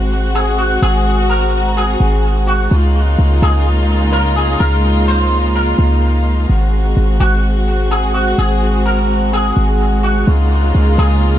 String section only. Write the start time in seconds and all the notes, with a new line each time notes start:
Already playing: G#3 C4 F#4
2.71 C#3 G#3 A#3 D#4 F4
6.50 G#3 C4 F#4
10.27 C#3 A#3 D#4 F4